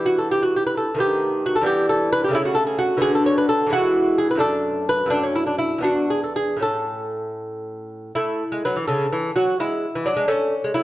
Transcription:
lute
Already playing: E3 G3 B3
0.06 F#4
0.18 A4
0.31 G4
0.43 F#4
0.56 G4
0.67 B4
0.77 A4
0.95 D#3 A3 B3
1.00 G4
1.46 F#4
1.56 A4
1.61 E3 G3 B3
1.66 G4
1.89 A4
2.13 B4
2.24 G4
2.28 C#3 A3
2.33 C#4 E4
2.45 F#4
2.55 A4
2.67 G#4
2.79 F#4
2.97 D3 B3 F#4
3.02 G#4
3.15 A4
3.26 C#5
3.38 B4
3.49 A4
3.66 E3 G#3
3.71 E4 F#4
4.18 G#4
4.31 B4
4.35 F#2 A3 D4
4.40 A4
4.89 B4
5.06 F#2 A3 B3
5.10 D4
5.23 C#4
5.35 E4
5.47 D4
5.58 E4
5.78 E2 B3
5.82 D4 F#4
6.10 G#4
6.24 A4
6.36 G#4
6.57 A2 A3
6.61 C#4 A4
8.15 A3 E4
8.52 G#3
8.65 F#3 B4
8.76 E3
8.87 C#3 A4
9.12 E3
9.36 F#3 F#4
9.60 G#3 E4
9.95 E3
10.06 F#3 D4
10.16 G#3
10.28 A3 C#4
10.64 G#3
10.74 F#3 E4

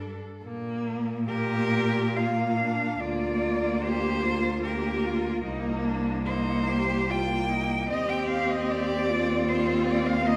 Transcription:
cello
Already playing: G2 D4
0.00 A4
0.43 A#2 A#3
1.28 A#3 G4 A#4
2.15 A#3 F4 F5
2.58 D4
2.99 D2 A#3 F4 D5
3.81 G4 C5
4.23 F4
4.62 A#3 G4 A#4
5.04 F4
5.44 C2 A#3 D#4
5.83 D4
6.25 A#3 D#4 C5
6.69 G4
7.09 A#3 F4 G5
7.49 D#4
7.89 D#2 C4 G4 D#5
8.09 G5
8.29 F5
8.50 D#5
8.70 G4 D5
9.09 F4
9.48 C4 C5
9.87 D5
10.07 F5
10.26 A#3 D#4 D#5

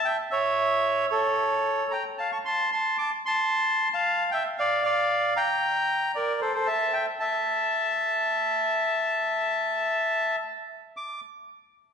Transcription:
bandoneon
0.05 E5 G5
0.31 C#5 E5
1.09 A4 C#5
1.91 G5 A#5
2.18 F5 A5
2.32 A5 C#6
2.45 A5 C6
2.72 A5 C6
2.98 A5 D6
3.26 A5 C6
3.92 F5 A5
4.31 E5 G5
4.58 D5 F5
4.83 D5 F5
5.36 G5 A#5
6.15 A#4 D5
6.41 A4 C5
6.54 A4 C5
6.66 E5 A5
6.93 E5 G5
7.20 E5 A5
10.97 D6

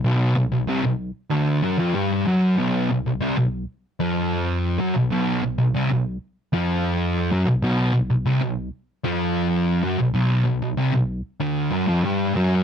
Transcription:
distorted electric guitar
0.04 B1 B2
0.36 B1
0.52 B1
0.68 C2 C3
0.84 B1
1.31 D2 D3
1.64 F#2 F#3
1.79 F2 F3
1.94 G2 G3
2.26 F#2 F#3
2.57 B1 B2
2.90 B1
3.06 B1
3.20 C2 C3
3.38 B1
4.00 F2 F3
4.79 F#2 F#3
4.95 B1
5.11 B1 B2
5.43 B1
5.58 B1
5.75 C2 C3
5.90 B1
6.53 F2 F3
7.32 F#2 F#3
7.47 B1
7.62 B1 B2
7.94 B1
8.10 B1
8.25 C2 C3
8.41 B1
9.04 F2 F3
9.83 F#2 F#3
9.99 B1
10.14 B1 B2
10.45 B1
10.62 B1
10.77 C2 C3
10.93 B1
11.40 D2 D3
11.71 F#2 F#3
11.87 F2 F3
12.04 G2 G3
12.35 F#2 F#3

